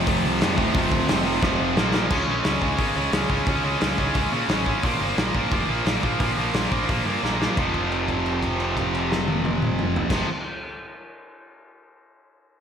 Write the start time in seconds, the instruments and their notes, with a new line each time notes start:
Already playing: distorted electric guitar F2 C3 F3
0.06 picked electric bass F1, distorted electric guitar F2 C3 F3, kick, open hi-hat
0.26 picked electric bass C2
0.41 distorted electric guitar F2 C3 F3, picked electric bass F2, snare, open hi-hat
0.57 picked electric bass D2, distorted electric guitar F2 C3 F3, kick
0.74 picked electric bass F1, distorted electric guitar F2 C3 F3, kick, open hi-hat
0.91 picked electric bass D2, kick
1.08 picked electric bass F1, distorted electric guitar F2 C3 F3, snare, open hi-hat
1.26 distorted electric guitar F2 C3 F3
1.42 picked electric bass F1, distorted electric guitar F2 C3 F3, kick, snare
1.60 picked electric bass F1
1.76 picked electric bass A#1, distorted electric guitar A#2 F3 A#3, snare
1.93 picked electric bass A#1, distorted electric guitar A#2 F3 A#3, snare
2.10 picked electric bass C#2, distorted electric guitar C#3 G#3 C#4, kick, crash
2.27 picked electric bass A#1, distorted electric guitar C#3 G#3 C#4
2.44 picked electric bass C#2, distorted electric guitar C#3 G#3 C#4, snare, open hi-hat
2.61 picked electric bass C#2, distorted electric guitar C#3 G#3 C#4, kick
2.78 picked electric bass G#1, distorted electric guitar C#3 G#3 C#4, kick, open hi-hat
2.95 picked electric bass C#2, distorted electric guitar C#3 G#3 C#4
3.12 picked electric bass C#2, distorted electric guitar C#3 G#3 C#4, snare, open hi-hat
3.29 picked electric bass C#2, distorted electric guitar C#3 G#3 C#4, kick
3.46 picked electric bass C#2, distorted electric guitar C#3 G#3 C#4, kick, open hi-hat
3.64 picked electric bass C#2, distorted electric guitar C#3 G#3 C#4
3.81 picked electric bass C#2, distorted electric guitar C#3 G#3 C#4, snare, open hi-hat
3.98 picked electric bass C#2, distorted electric guitar C#3 G#3 C#4, kick
4.15 picked electric bass C#2, distorted electric guitar C#3 G#3 C#4, kick, open hi-hat
4.32 picked electric bass A#2, distorted electric guitar C#3 G#3 C#4
4.48 picked electric bass A1, distorted electric guitar C#3 G#3, snare, open hi-hat
4.52 distorted electric guitar C#4
4.66 distorted electric guitar C#3 G#3 C#4, kick
4.83 picked electric bass A#1, distorted electric guitar A#2 F3 A#3, kick, open hi-hat
5.00 picked electric bass G1, distorted electric guitar A#2 F3 A#3
5.17 picked electric bass A#1, distorted electric guitar A#2 F3 A#3, snare, open hi-hat
5.35 picked electric bass A#1, distorted electric guitar A#2 F3 A#3, kick
5.51 picked electric bass F1, distorted electric guitar A#2 F3 A#3, kick, open hi-hat
5.69 picked electric bass A#1, distorted electric guitar A#2 F3 A#3
5.86 picked electric bass A#1, distorted electric guitar A#2 F3 A#3, snare, open hi-hat
6.03 picked electric bass A#1, distorted electric guitar A#2 F3 A#3, kick
6.19 picked electric bass A#1, distorted electric guitar A#2 F3 A#3, kick, open hi-hat
6.37 picked electric bass A#1, distorted electric guitar A#2 F3 A#3
6.54 picked electric bass A#1, distorted electric guitar A#2 F3 A#3, snare, open hi-hat
6.72 picked electric bass A#1, distorted electric guitar A#2 F3 A#3, kick
6.89 picked electric bass A#1, distorted electric guitar A#2 F3 A#3, kick, open hi-hat
7.05 picked electric bass G2, distorted electric guitar A#2 F3 A#3
7.23 picked electric bass A#1, distorted electric guitar A#2 F3 A#3, snare
7.41 distorted electric guitar A#2 F3 A#3, snare
7.57 picked electric bass F1, distorted electric guitar F2 C3, kick, crash
7.62 distorted electric guitar F3
7.74 kick, crash
7.92 crash
8.08 kick, crash
8.26 crash
8.43 kick, crash
8.60 crash
8.77 kick, crash
8.94 crash
9.12 snare
9.28 high tom
9.45 high tom
9.62 mid tom
9.79 mid tom
9.96 floor tom
10.10 picked electric bass F1, distorted electric guitar F2 C3, kick, snare, crash
10.14 distorted electric guitar F3